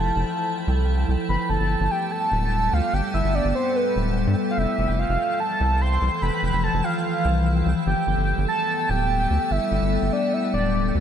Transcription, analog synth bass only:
0.00 0.12 F1 medium
0.16 0.24 F1 loud
0.68 1.05 C2 loud
1.09 1.17 C2 medium
1.29 1.37 G1 loud
1.50 1.58 G1 medium
1.60 1.76 G1 medium
1.81 1.89 G1 loud
2.32 2.70 D1 loud
2.73 2.81 D2 medium
2.94 3.02 G1 loud
3.14 3.22 G1 medium
3.24 3.41 G1 medium
3.45 3.53 G1 loud
3.96 4.27 D1 loud
4.27 4.35 G2 loud
4.58 4.66 F1 loud
4.78 4.87 F1 medium
4.89 5.05 F1 medium
5.09 5.17 F1 loud
5.61 5.98 C2 loud
6.02 6.10 C2 medium
6.22 6.30 F1 loud
6.43 6.51 F1 medium
6.53 6.69 F1 medium
6.74 6.82 F1 loud
7.25 7.63 C2 loud
7.66 7.74 C2 medium
7.87 7.95 G1 loud
8.07 8.15 G1 medium
8.18 8.34 G1 medium
8.38 8.46 G1 loud
8.90 9.27 D1 loud
9.31 9.39 D2 medium
9.51 9.59 G1 loud
9.72 9.80 G1 medium
9.82 9.98 G1 medium
10.03 10.11 G1 loud
10.54 10.91 D1 loud
10.95 11.00 D2 medium

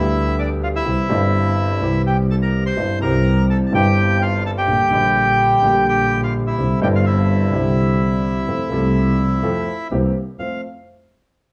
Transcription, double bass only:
0.00 0.81 D2 medium
0.86 1.06 C2 medium
1.09 1.77 G1 medium
1.80 2.72 C2 medium
2.76 2.97 G1 medium
3.00 3.69 C2 loud
3.73 4.63 G1 medium
4.67 4.88 A#1 medium
4.91 5.59 A#1 medium
5.63 6.53 A#1 loud
6.58 6.78 C2 medium
6.82 7.50 G1 loud
7.53 8.43 C2 medium
8.48 8.68 F2 medium
8.71 9.40 C2 medium
9.43 9.63 F2 medium
9.91 10.11 C2 medium
10.39 10.59 F2 medium

